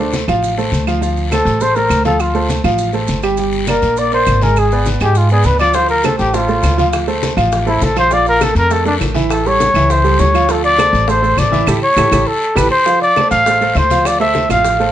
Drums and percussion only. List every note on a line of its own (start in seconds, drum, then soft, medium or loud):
0.13 high conga medium
0.13 short guiro medium
0.13 maracas medium
0.28 high conga soft
0.28 short guiro medium
0.28 claves medium
0.28 maracas soft
0.43 high conga soft
0.43 long guiro medium
0.43 maracas medium
0.59 high conga soft
0.59 maracas soft
0.72 high conga medium
0.72 short guiro medium
0.72 maracas medium
0.87 short guiro medium
0.87 claves medium
0.87 maracas soft
1.02 high conga soft
1.02 long guiro medium
1.02 maracas medium
1.17 high conga soft
1.17 maracas soft
1.32 high conga medium
1.32 short guiro medium
1.32 claves medium
1.32 maracas medium
1.46 high conga soft
1.46 short guiro medium
1.46 maracas soft
1.61 high conga soft
1.61 long guiro medium
1.61 maracas medium
1.76 high conga soft
1.76 maracas soft
1.89 high conga medium
1.89 short guiro medium
1.89 claves medium
1.89 maracas medium
2.05 high conga medium
2.05 short guiro medium
2.05 maracas soft
2.20 high conga soft
2.20 long guiro medium
2.20 claves medium
2.20 maracas medium
2.34 high conga soft
2.34 maracas soft
2.49 high conga medium
2.49 short guiro medium
2.49 maracas medium
2.64 high conga soft
2.64 short guiro medium
2.64 claves medium
2.64 maracas soft
2.78 high conga soft
2.78 long guiro medium
2.78 maracas medium
2.93 high conga soft
2.93 maracas soft
3.08 high conga medium
3.08 short guiro medium
3.08 maracas medium
3.22 short guiro medium
3.22 claves medium
3.22 maracas soft
3.37 high conga soft
3.37 long guiro medium
3.37 maracas medium
3.52 high conga soft
3.52 maracas soft
3.67 high conga medium
3.67 short guiro medium
3.67 claves medium
3.67 maracas medium
3.82 high conga soft
3.82 short guiro medium
3.82 maracas soft
3.97 high conga soft
3.97 long guiro medium
3.97 maracas medium
4.12 high conga soft
4.12 maracas soft
4.26 high conga medium
4.26 short guiro medium
4.26 claves medium
4.26 maracas medium
4.41 high conga medium
4.41 short guiro medium
4.41 maracas soft
4.56 high conga soft
4.56 long guiro medium
4.56 claves medium
4.56 maracas medium
4.72 high conga soft
4.72 maracas soft
4.85 high conga medium
4.85 short guiro medium
4.85 maracas medium
5.00 high conga soft
5.00 short guiro medium
5.00 claves medium
5.00 maracas soft
5.15 high conga soft
5.15 long guiro medium
5.15 maracas medium
5.29 high conga soft
5.29 maracas soft
5.43 high conga medium
5.43 short guiro medium
5.43 maracas medium
5.59 short guiro medium
5.59 claves medium
5.59 maracas soft
5.73 high bongo medium
5.73 high conga soft
5.73 long guiro medium
5.73 maracas medium
5.89 high bongo soft
5.89 high conga soft
5.89 maracas soft
6.03 high bongo medium
6.03 high conga medium
6.03 short guiro medium
6.03 claves medium
6.03 maracas medium
6.19 high conga soft
6.19 short guiro medium
6.19 maracas soft
6.34 high bongo medium
6.34 high conga soft
6.34 long guiro medium
6.34 maracas medium
6.49 high bongo soft
6.49 high conga soft
6.49 maracas soft
6.63 high bongo soft
6.63 low bongo medium
6.63 high conga medium
6.63 short guiro medium
6.63 claves medium
6.63 maracas medium
6.78 high bongo soft
6.78 high conga medium
6.78 short guiro medium
6.78 maracas soft
6.93 high bongo medium
6.93 high conga soft
6.93 long guiro medium
6.93 claves medium
6.93 maracas medium
7.08 high bongo soft
7.08 high conga soft
7.08 maracas soft
7.23 high bongo medium
7.23 high conga medium
7.23 short guiro medium
7.23 maracas medium
7.38 high conga soft
7.38 short guiro medium
7.38 claves medium
7.38 maracas soft
7.52 high bongo medium
7.52 high conga soft
7.52 long guiro medium
7.52 maracas medium
7.67 high bongo soft
7.67 high conga soft
7.67 maracas soft
7.81 high bongo soft
7.81 low bongo medium
7.81 high conga medium
7.81 short guiro medium
7.81 maracas medium
7.96 high bongo soft
7.96 short guiro medium
7.96 claves medium
7.96 maracas soft
8.11 high bongo medium
8.11 high conga soft
8.11 long guiro medium
8.11 maracas medium
8.26 high bongo soft
8.26 high conga soft
8.26 maracas soft
8.41 high bongo medium
8.41 high conga medium
8.41 short guiro medium
8.41 claves medium
8.41 maracas medium
8.56 high conga soft
8.56 short guiro medium
8.56 maracas soft
8.70 high bongo medium
8.70 high conga soft
8.70 long guiro medium
8.70 maracas medium
8.86 high bongo soft
8.86 high conga soft
8.86 maracas soft
9.00 high bongo soft
9.00 low bongo medium
9.00 high conga medium
9.00 short guiro medium
9.00 claves medium
9.00 maracas medium
9.14 high bongo soft
9.14 high conga medium
9.14 short guiro medium
9.14 maracas soft
9.29 high bongo medium
9.29 high conga soft
9.29 long guiro medium
9.29 claves medium
9.29 maracas medium
9.45 high bongo soft
9.45 high conga soft
9.45 maracas soft
9.59 high bongo medium
9.59 high conga medium
9.59 short guiro medium
9.59 maracas medium
9.74 high conga soft
9.74 short guiro medium
9.74 claves medium
9.74 maracas soft
9.90 high bongo medium
9.90 high conga soft
9.90 long guiro medium
9.90 maracas medium
10.04 high bongo soft
10.04 high conga soft
10.04 maracas soft
10.19 high bongo soft
10.19 low bongo medium
10.19 high conga medium
10.19 short guiro medium
10.19 maracas medium
10.34 high bongo soft
10.34 short guiro medium
10.34 claves medium
10.34 maracas soft
10.49 high bongo medium
10.49 high conga soft
10.49 long guiro medium
10.49 maracas medium
10.64 high bongo soft
10.64 high conga soft
10.64 maracas soft
10.79 high bongo medium
10.79 high conga medium
10.79 short guiro medium
10.79 claves medium
10.79 maracas medium
10.93 high conga soft
10.93 short guiro medium
10.93 maracas soft
11.08 high bongo medium
11.08 high conga soft
11.08 long guiro medium
11.08 maracas medium
11.23 high bongo soft
11.23 high conga soft
11.23 maracas soft
11.38 high bongo soft
11.38 low bongo medium
11.38 high conga medium
11.38 short guiro medium
11.38 claves medium
11.38 maracas medium
11.52 high bongo soft
11.52 high conga medium
11.52 short guiro medium
11.52 maracas soft
11.67 low bongo loud
11.67 high conga loud
11.67 long guiro loud
11.67 claves loud
11.67 maracas medium
11.97 low bongo loud
11.97 high conga medium
11.97 long guiro loud
11.97 claves loud
11.97 maracas loud
12.11 low bongo loud
12.11 high conga loud
12.11 long guiro loud
12.11 claves loud
12.11 maracas loud
12.56 low bongo loud
12.56 high conga loud
12.56 long guiro medium
12.56 claves loud
12.56 maracas loud
12.86 high bongo medium
12.86 high conga soft
12.86 long guiro medium
12.86 maracas medium
13.02 high conga soft
13.02 maracas soft
13.16 high bongo medium
13.16 high conga medium
13.16 short guiro medium
13.16 claves medium
13.16 maracas soft
13.31 high bongo soft
13.31 high conga soft
13.31 short guiro medium
13.31 maracas medium
13.45 high bongo medium
13.45 high conga soft
13.45 long guiro medium
13.45 maracas medium
13.61 high bongo soft
13.61 high conga soft
13.61 maracas soft
13.75 high bongo soft
13.75 low bongo medium
13.75 high conga medium
13.75 short guiro medium
13.75 claves medium
13.75 maracas soft
13.90 high bongo soft
13.90 high conga medium
13.90 short guiro medium
13.90 maracas medium
14.05 high bongo medium
14.05 high conga soft
14.05 long guiro medium
14.05 claves medium
14.05 maracas medium
14.21 high conga soft
14.21 maracas soft
14.35 high bongo medium
14.35 high conga medium
14.35 short guiro medium
14.35 maracas soft
14.50 high bongo soft
14.50 high conga soft
14.50 low conga medium
14.50 short guiro medium
14.50 claves medium
14.50 maracas medium
14.65 high bongo medium
14.65 high conga soft
14.65 long guiro medium
14.65 maracas medium
14.79 high bongo soft
14.79 high conga soft
14.79 maracas soft